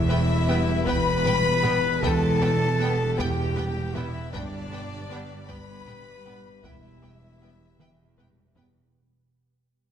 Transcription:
Already playing: E1 E2 E3 B3 E4 G4 B4 E5
0.09 G3 B3 B4 G5
0.48 G3 B3 B4 G5
0.86 E1 E2 E3 B3 B4 G5 B5, taiko
1.25 G3 B3 B4 G5, taiko low-mid
1.62 G3 B3 B4 G5, taiko low-mid
2.01 E1 E2 B3 A4 B4 G5 A5, taiko
2.41 G3 B3 B4 G5, taiko rim
2.79 G3 B3 B4 G5
3.18 E1 E2 E3 B3 G4 B4 G5, taiko
3.56 G3 B3 B4 G5, taiko low-mid
3.94 G3 B3 E4 B4 E5 G5, taiko low-mid
4.32 G1 G2 G3 B3 D4 G4 B4 D5 G5, taiko
4.71 B3 B4 G5
5.10 G3 B3 B4 G5
5.48 G1 G2 G3 B3 B4 G5 B5, taiko
5.87 B3 B4 G5, taiko low-mid
6.25 G3 B3 D4 B4 G5, taiko low-mid
6.63 E1 E2 E3 B3 E4 B4 E5 G5, taiko
7.02 G3 B3 B4 G5, taiko rim
7.41 G3 B3 B4 G5
7.79 E1 E2 E3 B3 B4 G5, taiko mid
8.18 G3 B3 B4 G5, taiko low-mid
8.55 G3 B3 B4 G5, taiko low

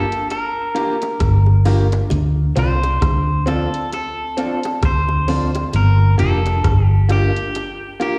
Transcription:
Already playing: A4
0.12 closed hi-hat
0.30 A#4, closed hi-hat, high bongo
0.75 A#3 D4 F4 G4 A#4, closed hi-hat
1.02 closed hi-hat, high bongo
1.20 G1 G2, kick, cross-stick, closed hi-hat
1.46 high bongo
1.65 A#3 D4 F4 G4 A#4, open hi-hat, low bongo
1.92 muted clean electric guitar stroke, closed hi-hat, high bongo
2.10 D2 D3, closed hi-hat, high bongo
2.56 C2 C3 C4 D4 F4 A4 C5, closed hi-hat
2.83 closed hi-hat, high bongo
3.01 D2 D3, kick, cross-stick, closed hi-hat
3.46 C4 D4 F4 A4, closed hi-hat, high bongo, low bongo
3.74 closed hi-hat
3.93 A4, closed hi-hat, high bongo
4.37 C4 D4 F4 A4, closed hi-hat
4.63 closed hi-hat, high bongo
4.83 D2 D3 C5, kick, cross-stick, closed hi-hat
5.09 high bongo
5.28 C4 D4 F4 A4, open hi-hat, low bongo
5.55 muted clean electric guitar stroke, closed hi-hat, high bongo
5.73 G1 G2 A#4, closed hi-hat, high bongo
6.18 F1 F2 A#3 D4 F4 G4 A4 A#4, closed hi-hat
6.46 closed hi-hat, high bongo
6.64 G1 G2, kick, cross-stick, closed hi-hat
6.86 G4
7.09 A#3 D4 F4 G4 A#4, cross-stick, closed hi-hat, high bongo, low bongo
7.36 closed hi-hat
7.55 closed hi-hat, high bongo
8.00 A#3 D4 F4 G4 A#4, closed hi-hat

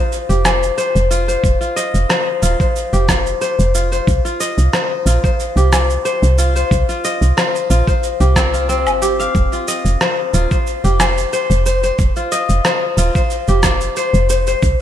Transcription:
Already playing: F4 C5 D#5
0.12 cabasa
0.29 F1 G4, cabasa
0.45 C5, cross-stick, cabasa, low woodblock
0.63 cabasa
0.78 C5, cabasa
0.95 F1, cabasa
1.11 F4, cabasa
1.28 C5, cabasa
1.44 F1, kick, cabasa
1.61 F4, cabasa
1.76 D#5, cabasa
1.94 F1, cabasa
2.09 C5, cross-stick, cabasa
2.42 D#1 F4, cabasa
2.60 C5, kick, cabasa
2.76 cabasa
2.93 F1 G4, cabasa
3.09 C5, kick, cross-stick, cabasa
3.26 cabasa
3.41 C5, cabasa
3.59 F1, cabasa
3.75 F4, cabasa
3.92 C5, cabasa
4.07 C2, kick, cabasa
4.25 F4, cabasa
4.40 D#5, cabasa
4.58 C2, cabasa
4.73 C5, cross-stick, cabasa
5.06 A#1 F4, cabasa
5.24 C5, kick, cabasa
5.40 cabasa
5.56 C2 G4, cabasa
5.72 C5, cross-stick, cabasa, low woodblock
5.90 cabasa
6.05 C5, cabasa
6.22 C2, cabasa
6.38 F4, cabasa
6.56 C5, cabasa
6.71 C2, kick, cabasa
6.89 F4, cabasa
7.04 D#5, cabasa
7.21 C2, cabasa
7.37 C5, cross-stick, cabasa
7.55 cabasa
7.70 A#1 F4, cabasa
7.87 C5, kick, cabasa
8.03 cabasa
8.20 C2 G4, cabasa
8.36 C4, kick, cross-stick, cabasa
8.54 F4, cabasa
8.69 C4, cabasa
8.86 G1, cabasa, low woodblock
9.02 G4, cabasa
9.20 F5, cabasa
9.35 F1, kick, cabasa
9.53 F4, cabasa
9.68 D#5, cabasa
9.85 F1, cabasa
10.01 C5, cross-stick, cabasa
10.34 D#1 F4, cabasa
10.51 C5, kick, cabasa
10.67 cabasa
10.84 F1 G4, cabasa
11.00 C5, cross-stick, cabasa, low woodblock
11.18 cabasa
11.33 C5, cabasa
11.50 F1, cabasa
11.66 C5, cabasa
11.83 C5, cabasa
11.99 F1, kick, cabasa
12.16 F4, cabasa
12.32 D#5, cabasa
12.49 F1, cabasa
12.65 C5, cross-stick, cabasa
12.97 D#1 F4, cabasa
13.15 C5, kick, cabasa
13.30 cabasa
13.48 F1 G4, cabasa
13.63 C5, kick, cross-stick, cabasa
13.81 cabasa
13.96 C5, cabasa
14.13 F1, cabasa
14.29 C5, cabasa
14.47 C5, cabasa
14.62 C2, kick, cabasa

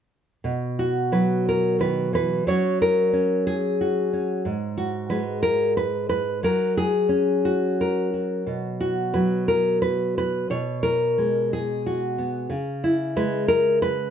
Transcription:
0.44 B2
0.79 F#4
1.12 F#3 B4
1.49 A#4
1.79 D#3 B4
2.13 E3 B4
2.47 F#3 C#4 F#4 C#5
2.82 A#4
3.13 C#4
3.47 G#4
3.81 F#4
4.13 C#4
4.45 G#2
4.78 F#4
5.10 G#3 B4
5.43 A#4
5.77 B4
6.09 B4
6.43 F#3 A#4
6.78 G#4
7.09 C#4
7.45 F#4
7.81 A#4
8.14 F#4
8.47 B2
8.81 F#4
9.14 F#3 B4
9.48 A#4
9.82 B4
10.18 B4
10.50 B2 C#5
10.83 A#4
11.18 G#3
11.53 G#4
11.86 F#4
12.18 B3
12.50 C#3
12.84 E4
13.16 G#3 B4
13.48 A#4
13.82 B4

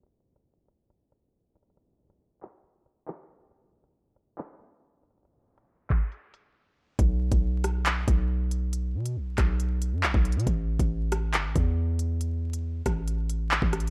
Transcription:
0.03 closed hi-hat
0.36 closed hi-hat
0.68 closed hi-hat
0.90 closed hi-hat
1.12 closed hi-hat
1.56 closed hi-hat
1.63 closed hi-hat
1.70 closed hi-hat
1.77 closed hi-hat
2.10 closed hi-hat
2.42 clap, closed hi-hat
2.64 closed hi-hat
2.86 closed hi-hat
3.08 clap
3.29 closed hi-hat
3.40 closed hi-hat
3.51 closed hi-hat
3.84 closed hi-hat
4.16 closed hi-hat
4.38 clap
4.60 closed hi-hat
5.03 closed hi-hat
5.11 closed hi-hat
5.18 closed hi-hat
5.25 closed hi-hat
5.58 closed hi-hat
5.90 kick, clap, closed hi-hat
6.12 closed hi-hat
6.34 closed hi-hat
6.99 B1, kick, closed hi-hat
7.32 B1, kick, closed hi-hat
7.64 cross-stick, closed hi-hat
7.86 clap, closed hi-hat
8.08 B1, kick, closed hi-hat
8.51 closed hi-hat
8.73 closed hi-hat
8.95 B2
9.06 closed hi-hat
9.16 B1
9.38 B1, kick, cross-stick, clap, closed hi-hat
9.60 closed hi-hat
9.82 closed hi-hat
9.92 F#2
10.03 B1, clap
10.14 B1, kick
10.25 closed hi-hat
10.32 B2, closed hi-hat
10.40 closed hi-hat
10.47 A1, kick, closed hi-hat
10.79 A1, kick, closed hi-hat
11.12 cross-stick, closed hi-hat
11.34 G1, clap, closed hi-hat
11.45 A1
11.56 E2, kick, closed hi-hat
11.99 closed hi-hat
12.21 closed hi-hat
12.53 closed hi-hat
12.86 A1, kick, cross-stick, closed hi-hat
13.08 closed hi-hat
13.29 closed hi-hat
13.51 clap
13.62 A1, kick
13.73 cross-stick, closed hi-hat
13.80 closed hi-hat

